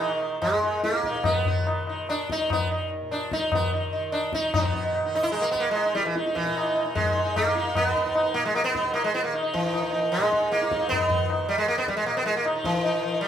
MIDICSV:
0, 0, Header, 1, 4, 480
1, 0, Start_track
1, 0, Tempo, 414079
1, 1447, Time_signature, 4, 2, 24, 8
1, 3837, Tempo, 405405
1, 7677, Tempo, 396301
1, 11997, Tempo, 387347
1, 15912, End_track
2, 0, Start_track
2, 0, Title_t, "Sitar"
2, 0, Program_c, 0, 104
2, 0, Note_on_c, 0, 52, 80
2, 4, Note_on_c, 0, 63, 39
2, 139, Note_off_c, 0, 52, 0
2, 139, Note_on_c, 0, 51, 80
2, 226, Note_off_c, 0, 63, 0
2, 436, Note_off_c, 0, 51, 0
2, 482, Note_on_c, 0, 56, 90
2, 725, Note_on_c, 0, 63, 37
2, 931, Note_off_c, 0, 56, 0
2, 949, Note_off_c, 0, 63, 0
2, 970, Note_on_c, 0, 58, 95
2, 1229, Note_on_c, 0, 63, 40
2, 1442, Note_off_c, 0, 63, 0
2, 1450, Note_on_c, 0, 59, 96
2, 1464, Note_off_c, 0, 58, 0
2, 1701, Note_on_c, 0, 63, 38
2, 1918, Note_off_c, 0, 63, 0
2, 2123, Note_off_c, 0, 59, 0
2, 2193, Note_on_c, 0, 63, 37
2, 2404, Note_off_c, 0, 63, 0
2, 2429, Note_on_c, 0, 62, 95
2, 2664, Note_off_c, 0, 62, 0
2, 2690, Note_on_c, 0, 63, 100
2, 2914, Note_off_c, 0, 63, 0
2, 2931, Note_on_c, 0, 59, 77
2, 3131, Note_off_c, 0, 59, 0
2, 3142, Note_on_c, 0, 63, 41
2, 3355, Note_off_c, 0, 63, 0
2, 3613, Note_on_c, 0, 62, 84
2, 3851, Note_off_c, 0, 62, 0
2, 3861, Note_on_c, 0, 63, 101
2, 4099, Note_off_c, 0, 63, 0
2, 4121, Note_on_c, 0, 59, 75
2, 4327, Note_off_c, 0, 59, 0
2, 4340, Note_on_c, 0, 63, 38
2, 4557, Note_off_c, 0, 63, 0
2, 4569, Note_on_c, 0, 63, 36
2, 4791, Note_off_c, 0, 63, 0
2, 4799, Note_on_c, 0, 62, 88
2, 5050, Note_off_c, 0, 62, 0
2, 5062, Note_on_c, 0, 63, 103
2, 5281, Note_off_c, 0, 63, 0
2, 5295, Note_on_c, 0, 59, 82
2, 5299, Note_on_c, 0, 63, 41
2, 5407, Note_off_c, 0, 63, 0
2, 5421, Note_on_c, 0, 63, 39
2, 5525, Note_off_c, 0, 63, 0
2, 5539, Note_on_c, 0, 63, 41
2, 5647, Note_off_c, 0, 63, 0
2, 5661, Note_on_c, 0, 63, 39
2, 5878, Note_off_c, 0, 63, 0
2, 5901, Note_on_c, 0, 63, 39
2, 5965, Note_off_c, 0, 59, 0
2, 6007, Note_off_c, 0, 63, 0
2, 6021, Note_on_c, 0, 63, 105
2, 6112, Note_on_c, 0, 64, 100
2, 6137, Note_off_c, 0, 63, 0
2, 6213, Note_off_c, 0, 64, 0
2, 6218, Note_on_c, 0, 56, 96
2, 6331, Note_on_c, 0, 58, 94
2, 6356, Note_off_c, 0, 56, 0
2, 6441, Note_off_c, 0, 58, 0
2, 6445, Note_on_c, 0, 59, 92
2, 6550, Note_on_c, 0, 58, 88
2, 6590, Note_off_c, 0, 59, 0
2, 6674, Note_off_c, 0, 58, 0
2, 6679, Note_on_c, 0, 56, 90
2, 6845, Note_on_c, 0, 63, 42
2, 6949, Note_off_c, 0, 56, 0
2, 6959, Note_on_c, 0, 55, 93
2, 7066, Note_off_c, 0, 63, 0
2, 7080, Note_off_c, 0, 55, 0
2, 7084, Note_on_c, 0, 52, 71
2, 7194, Note_off_c, 0, 52, 0
2, 7214, Note_on_c, 0, 63, 43
2, 7316, Note_off_c, 0, 63, 0
2, 7331, Note_on_c, 0, 63, 39
2, 7437, Note_on_c, 0, 52, 87
2, 7543, Note_off_c, 0, 63, 0
2, 7557, Note_on_c, 0, 63, 38
2, 7669, Note_off_c, 0, 63, 0
2, 7683, Note_on_c, 0, 63, 44
2, 7792, Note_off_c, 0, 63, 0
2, 7806, Note_on_c, 0, 63, 45
2, 7901, Note_off_c, 0, 63, 0
2, 7916, Note_on_c, 0, 63, 39
2, 8018, Note_off_c, 0, 63, 0
2, 8033, Note_on_c, 0, 63, 44
2, 8155, Note_off_c, 0, 52, 0
2, 8160, Note_on_c, 0, 56, 90
2, 8262, Note_off_c, 0, 63, 0
2, 8294, Note_on_c, 0, 63, 39
2, 8405, Note_off_c, 0, 63, 0
2, 8420, Note_on_c, 0, 63, 38
2, 8506, Note_off_c, 0, 63, 0
2, 8521, Note_on_c, 0, 63, 39
2, 8653, Note_off_c, 0, 56, 0
2, 8658, Note_on_c, 0, 58, 101
2, 8748, Note_off_c, 0, 63, 0
2, 8778, Note_on_c, 0, 63, 43
2, 8886, Note_off_c, 0, 63, 0
2, 8901, Note_on_c, 0, 63, 43
2, 9015, Note_off_c, 0, 63, 0
2, 9030, Note_on_c, 0, 63, 38
2, 9140, Note_off_c, 0, 58, 0
2, 9145, Note_on_c, 0, 59, 109
2, 9240, Note_off_c, 0, 63, 0
2, 9255, Note_on_c, 0, 63, 40
2, 9357, Note_off_c, 0, 63, 0
2, 9372, Note_on_c, 0, 63, 38
2, 9478, Note_off_c, 0, 63, 0
2, 9492, Note_on_c, 0, 63, 40
2, 9589, Note_off_c, 0, 63, 0
2, 9604, Note_on_c, 0, 63, 43
2, 9694, Note_off_c, 0, 63, 0
2, 9708, Note_on_c, 0, 63, 47
2, 9839, Note_off_c, 0, 59, 0
2, 9843, Note_on_c, 0, 58, 100
2, 9942, Note_off_c, 0, 63, 0
2, 9971, Note_off_c, 0, 58, 0
2, 9980, Note_on_c, 0, 56, 94
2, 10095, Note_off_c, 0, 56, 0
2, 10100, Note_on_c, 0, 58, 93
2, 10201, Note_off_c, 0, 58, 0
2, 10206, Note_on_c, 0, 59, 102
2, 10326, Note_on_c, 0, 63, 41
2, 10433, Note_off_c, 0, 63, 0
2, 10448, Note_on_c, 0, 63, 42
2, 10557, Note_off_c, 0, 59, 0
2, 10562, Note_on_c, 0, 58, 92
2, 10671, Note_off_c, 0, 63, 0
2, 10677, Note_off_c, 0, 58, 0
2, 10692, Note_on_c, 0, 56, 93
2, 10809, Note_off_c, 0, 56, 0
2, 10814, Note_on_c, 0, 59, 102
2, 10923, Note_off_c, 0, 59, 0
2, 10928, Note_on_c, 0, 58, 80
2, 11038, Note_off_c, 0, 58, 0
2, 11047, Note_on_c, 0, 63, 44
2, 11139, Note_off_c, 0, 63, 0
2, 11154, Note_on_c, 0, 63, 42
2, 11290, Note_on_c, 0, 52, 88
2, 11381, Note_off_c, 0, 63, 0
2, 11429, Note_on_c, 0, 63, 41
2, 11509, Note_off_c, 0, 63, 0
2, 11523, Note_on_c, 0, 63, 41
2, 11614, Note_off_c, 0, 63, 0
2, 11628, Note_on_c, 0, 63, 43
2, 11735, Note_off_c, 0, 63, 0
2, 11750, Note_on_c, 0, 63, 42
2, 11849, Note_off_c, 0, 63, 0
2, 11864, Note_on_c, 0, 63, 40
2, 11951, Note_off_c, 0, 52, 0
2, 11993, Note_on_c, 0, 56, 92
2, 12093, Note_off_c, 0, 63, 0
2, 12116, Note_on_c, 0, 63, 43
2, 12213, Note_off_c, 0, 63, 0
2, 12227, Note_on_c, 0, 63, 42
2, 12325, Note_off_c, 0, 63, 0
2, 12340, Note_on_c, 0, 63, 40
2, 12446, Note_off_c, 0, 56, 0
2, 12488, Note_on_c, 0, 58, 96
2, 12575, Note_off_c, 0, 63, 0
2, 12596, Note_on_c, 0, 63, 40
2, 12704, Note_off_c, 0, 63, 0
2, 12719, Note_on_c, 0, 63, 40
2, 12810, Note_off_c, 0, 63, 0
2, 12824, Note_on_c, 0, 63, 40
2, 12935, Note_off_c, 0, 58, 0
2, 12951, Note_on_c, 0, 59, 113
2, 13033, Note_off_c, 0, 63, 0
2, 13048, Note_on_c, 0, 63, 40
2, 13164, Note_off_c, 0, 63, 0
2, 13179, Note_on_c, 0, 63, 43
2, 13416, Note_off_c, 0, 63, 0
2, 13685, Note_off_c, 0, 59, 0
2, 13690, Note_on_c, 0, 55, 95
2, 13800, Note_off_c, 0, 55, 0
2, 13805, Note_on_c, 0, 56, 92
2, 13927, Note_off_c, 0, 56, 0
2, 13932, Note_on_c, 0, 58, 97
2, 14041, Note_off_c, 0, 58, 0
2, 14051, Note_on_c, 0, 59, 99
2, 14173, Note_off_c, 0, 59, 0
2, 14181, Note_on_c, 0, 55, 85
2, 14281, Note_off_c, 0, 55, 0
2, 14286, Note_on_c, 0, 56, 93
2, 14400, Note_off_c, 0, 56, 0
2, 14405, Note_on_c, 0, 58, 90
2, 14529, Note_off_c, 0, 58, 0
2, 14535, Note_on_c, 0, 59, 100
2, 14639, Note_off_c, 0, 59, 0
2, 14644, Note_on_c, 0, 56, 98
2, 14768, Note_off_c, 0, 56, 0
2, 14779, Note_on_c, 0, 58, 83
2, 14883, Note_off_c, 0, 58, 0
2, 14886, Note_on_c, 0, 63, 42
2, 14998, Note_off_c, 0, 63, 0
2, 15013, Note_on_c, 0, 63, 42
2, 15135, Note_on_c, 0, 52, 92
2, 15230, Note_off_c, 0, 63, 0
2, 15257, Note_on_c, 0, 63, 38
2, 15352, Note_off_c, 0, 63, 0
2, 15367, Note_on_c, 0, 63, 47
2, 15474, Note_off_c, 0, 63, 0
2, 15489, Note_on_c, 0, 63, 45
2, 15590, Note_off_c, 0, 63, 0
2, 15605, Note_on_c, 0, 63, 44
2, 15721, Note_off_c, 0, 63, 0
2, 15736, Note_on_c, 0, 63, 41
2, 15793, Note_off_c, 0, 52, 0
2, 15826, Note_on_c, 0, 56, 98
2, 15912, Note_off_c, 0, 56, 0
2, 15912, Note_off_c, 0, 63, 0
2, 15912, End_track
3, 0, Start_track
3, 0, Title_t, "Tanpura"
3, 0, Program_c, 1, 104
3, 0, Note_on_c, 1, 39, 59
3, 0, Note_on_c, 1, 46, 61
3, 0, Note_on_c, 1, 51, 57
3, 74, Note_off_c, 1, 51, 0
3, 74, Note_on_c, 1, 51, 55
3, 652, Note_off_c, 1, 39, 0
3, 656, Note_on_c, 1, 39, 65
3, 1226, Note_off_c, 1, 46, 0
3, 1230, Note_on_c, 1, 46, 63
3, 1804, Note_off_c, 1, 51, 0
3, 1804, Note_on_c, 1, 51, 59
3, 2387, Note_off_c, 1, 51, 0
3, 2387, Note_on_c, 1, 51, 61
3, 2935, Note_off_c, 1, 39, 0
3, 2940, Note_on_c, 1, 39, 57
3, 3501, Note_off_c, 1, 46, 0
3, 3505, Note_on_c, 1, 46, 57
3, 4062, Note_off_c, 1, 51, 0
3, 4062, Note_on_c, 1, 51, 64
3, 4624, Note_off_c, 1, 51, 0
3, 4624, Note_on_c, 1, 51, 57
3, 5306, Note_off_c, 1, 46, 0
3, 5306, Note_on_c, 1, 46, 61
3, 5875, Note_off_c, 1, 51, 0
3, 5875, Note_on_c, 1, 51, 66
3, 6449, Note_off_c, 1, 51, 0
3, 6449, Note_on_c, 1, 51, 65
3, 6980, Note_off_c, 1, 39, 0
3, 6985, Note_on_c, 1, 39, 63
3, 7530, Note_off_c, 1, 46, 0
3, 7530, Note_on_c, 1, 46, 62
3, 8125, Note_off_c, 1, 51, 0
3, 8125, Note_on_c, 1, 51, 68
3, 8679, Note_off_c, 1, 51, 0
3, 8679, Note_on_c, 1, 51, 64
3, 9258, Note_off_c, 1, 39, 0
3, 9263, Note_on_c, 1, 39, 70
3, 9825, Note_off_c, 1, 46, 0
3, 9830, Note_on_c, 1, 46, 69
3, 10390, Note_off_c, 1, 51, 0
3, 10390, Note_on_c, 1, 51, 63
3, 10940, Note_off_c, 1, 51, 0
3, 10940, Note_on_c, 1, 51, 69
3, 11509, Note_off_c, 1, 39, 0
3, 11514, Note_on_c, 1, 39, 72
3, 12071, Note_off_c, 1, 46, 0
3, 12076, Note_on_c, 1, 46, 60
3, 12666, Note_off_c, 1, 51, 0
3, 12666, Note_on_c, 1, 51, 66
3, 13253, Note_off_c, 1, 51, 0
3, 13253, Note_on_c, 1, 51, 60
3, 13777, Note_off_c, 1, 39, 0
3, 13782, Note_on_c, 1, 39, 63
3, 14354, Note_off_c, 1, 46, 0
3, 14359, Note_on_c, 1, 46, 68
3, 14909, Note_off_c, 1, 51, 0
3, 14909, Note_on_c, 1, 51, 65
3, 15478, Note_off_c, 1, 51, 0
3, 15478, Note_on_c, 1, 51, 62
3, 15912, Note_off_c, 1, 39, 0
3, 15912, Note_off_c, 1, 46, 0
3, 15912, Note_off_c, 1, 51, 0
3, 15912, End_track
4, 0, Start_track
4, 0, Title_t, "Tabla"
4, 0, Note_on_c, 9, 60, 82
4, 114, Note_off_c, 9, 60, 0
4, 244, Note_on_c, 9, 60, 62
4, 359, Note_off_c, 9, 60, 0
4, 486, Note_on_c, 9, 60, 81
4, 486, Note_on_c, 9, 64, 68
4, 602, Note_off_c, 9, 60, 0
4, 602, Note_off_c, 9, 64, 0
4, 732, Note_on_c, 9, 62, 57
4, 848, Note_off_c, 9, 62, 0
4, 968, Note_on_c, 9, 62, 81
4, 1084, Note_off_c, 9, 62, 0
4, 1087, Note_on_c, 9, 62, 57
4, 1201, Note_on_c, 9, 37, 57
4, 1202, Note_off_c, 9, 62, 0
4, 1317, Note_off_c, 9, 37, 0
4, 1321, Note_on_c, 9, 62, 60
4, 1436, Note_on_c, 9, 60, 108
4, 1436, Note_on_c, 9, 64, 90
4, 1437, Note_off_c, 9, 62, 0
4, 1552, Note_off_c, 9, 60, 0
4, 1552, Note_off_c, 9, 64, 0
4, 1688, Note_on_c, 9, 64, 69
4, 1804, Note_off_c, 9, 64, 0
4, 1934, Note_on_c, 9, 60, 84
4, 2050, Note_off_c, 9, 60, 0
4, 2170, Note_on_c, 9, 60, 57
4, 2286, Note_off_c, 9, 60, 0
4, 2423, Note_on_c, 9, 60, 75
4, 2539, Note_off_c, 9, 60, 0
4, 2661, Note_on_c, 9, 37, 72
4, 2777, Note_off_c, 9, 37, 0
4, 2900, Note_on_c, 9, 60, 97
4, 2900, Note_on_c, 9, 64, 83
4, 3016, Note_off_c, 9, 60, 0
4, 3016, Note_off_c, 9, 64, 0
4, 3609, Note_on_c, 9, 60, 73
4, 3725, Note_off_c, 9, 60, 0
4, 3843, Note_on_c, 9, 37, 76
4, 3962, Note_off_c, 9, 37, 0
4, 4082, Note_on_c, 9, 60, 97
4, 4082, Note_on_c, 9, 64, 88
4, 4201, Note_off_c, 9, 60, 0
4, 4201, Note_off_c, 9, 64, 0
4, 4807, Note_on_c, 9, 60, 77
4, 4925, Note_off_c, 9, 60, 0
4, 5041, Note_on_c, 9, 37, 73
4, 5159, Note_off_c, 9, 37, 0
4, 5291, Note_on_c, 9, 60, 113
4, 5291, Note_on_c, 9, 64, 103
4, 5409, Note_off_c, 9, 60, 0
4, 5409, Note_off_c, 9, 64, 0
4, 5530, Note_on_c, 9, 64, 82
4, 5648, Note_off_c, 9, 64, 0
4, 5772, Note_on_c, 9, 60, 79
4, 5890, Note_off_c, 9, 60, 0
4, 6013, Note_on_c, 9, 60, 65
4, 6132, Note_off_c, 9, 60, 0
4, 6245, Note_on_c, 9, 60, 87
4, 6363, Note_off_c, 9, 60, 0
4, 6487, Note_on_c, 9, 37, 60
4, 6606, Note_off_c, 9, 37, 0
4, 6732, Note_on_c, 9, 60, 80
4, 6851, Note_off_c, 9, 60, 0
4, 6970, Note_on_c, 9, 62, 61
4, 7088, Note_off_c, 9, 62, 0
4, 7207, Note_on_c, 9, 62, 80
4, 7326, Note_off_c, 9, 62, 0
4, 7332, Note_on_c, 9, 62, 62
4, 7450, Note_off_c, 9, 62, 0
4, 7455, Note_on_c, 9, 37, 68
4, 7572, Note_on_c, 9, 62, 65
4, 7573, Note_off_c, 9, 37, 0
4, 7691, Note_off_c, 9, 62, 0
4, 7698, Note_on_c, 9, 60, 76
4, 7819, Note_off_c, 9, 60, 0
4, 7935, Note_on_c, 9, 60, 63
4, 8056, Note_off_c, 9, 60, 0
4, 8167, Note_on_c, 9, 60, 84
4, 8167, Note_on_c, 9, 64, 79
4, 8288, Note_off_c, 9, 60, 0
4, 8288, Note_off_c, 9, 64, 0
4, 8413, Note_on_c, 9, 62, 60
4, 8534, Note_off_c, 9, 62, 0
4, 8657, Note_on_c, 9, 60, 87
4, 8657, Note_on_c, 9, 64, 81
4, 8778, Note_off_c, 9, 60, 0
4, 8778, Note_off_c, 9, 64, 0
4, 8889, Note_on_c, 9, 62, 69
4, 9010, Note_off_c, 9, 62, 0
4, 9131, Note_on_c, 9, 60, 108
4, 9131, Note_on_c, 9, 64, 100
4, 9252, Note_off_c, 9, 60, 0
4, 9252, Note_off_c, 9, 64, 0
4, 9375, Note_on_c, 9, 64, 80
4, 9496, Note_off_c, 9, 64, 0
4, 9616, Note_on_c, 9, 60, 86
4, 9737, Note_off_c, 9, 60, 0
4, 9858, Note_on_c, 9, 60, 63
4, 9979, Note_off_c, 9, 60, 0
4, 10092, Note_on_c, 9, 60, 91
4, 10213, Note_off_c, 9, 60, 0
4, 10336, Note_on_c, 9, 37, 60
4, 10457, Note_off_c, 9, 37, 0
4, 10584, Note_on_c, 9, 60, 86
4, 10705, Note_off_c, 9, 60, 0
4, 10819, Note_on_c, 9, 62, 60
4, 10940, Note_off_c, 9, 62, 0
4, 11059, Note_on_c, 9, 60, 87
4, 11180, Note_off_c, 9, 60, 0
4, 11301, Note_on_c, 9, 37, 68
4, 11422, Note_off_c, 9, 37, 0
4, 11534, Note_on_c, 9, 60, 81
4, 11655, Note_off_c, 9, 60, 0
4, 11778, Note_on_c, 9, 60, 66
4, 11900, Note_off_c, 9, 60, 0
4, 12004, Note_on_c, 9, 60, 88
4, 12128, Note_off_c, 9, 60, 0
4, 12254, Note_on_c, 9, 37, 64
4, 12378, Note_off_c, 9, 37, 0
4, 12497, Note_on_c, 9, 62, 84
4, 12613, Note_off_c, 9, 62, 0
4, 12613, Note_on_c, 9, 62, 67
4, 12735, Note_on_c, 9, 37, 70
4, 12737, Note_off_c, 9, 62, 0
4, 12854, Note_on_c, 9, 62, 60
4, 12858, Note_off_c, 9, 37, 0
4, 12978, Note_off_c, 9, 62, 0
4, 12985, Note_on_c, 9, 60, 109
4, 12985, Note_on_c, 9, 64, 100
4, 13109, Note_off_c, 9, 60, 0
4, 13109, Note_off_c, 9, 64, 0
4, 13216, Note_on_c, 9, 64, 71
4, 13340, Note_off_c, 9, 64, 0
4, 13459, Note_on_c, 9, 60, 88
4, 13582, Note_off_c, 9, 60, 0
4, 13706, Note_on_c, 9, 60, 65
4, 13830, Note_off_c, 9, 60, 0
4, 13933, Note_on_c, 9, 60, 88
4, 14057, Note_off_c, 9, 60, 0
4, 14179, Note_on_c, 9, 37, 66
4, 14303, Note_off_c, 9, 37, 0
4, 14410, Note_on_c, 9, 60, 88
4, 14534, Note_off_c, 9, 60, 0
4, 14657, Note_on_c, 9, 62, 68
4, 14780, Note_off_c, 9, 62, 0
4, 14891, Note_on_c, 9, 60, 87
4, 15015, Note_off_c, 9, 60, 0
4, 15126, Note_on_c, 9, 37, 68
4, 15250, Note_off_c, 9, 37, 0
4, 15368, Note_on_c, 9, 60, 81
4, 15492, Note_off_c, 9, 60, 0
4, 15604, Note_on_c, 9, 60, 65
4, 15728, Note_off_c, 9, 60, 0
4, 15845, Note_on_c, 9, 60, 84
4, 15912, Note_off_c, 9, 60, 0
4, 15912, End_track
0, 0, End_of_file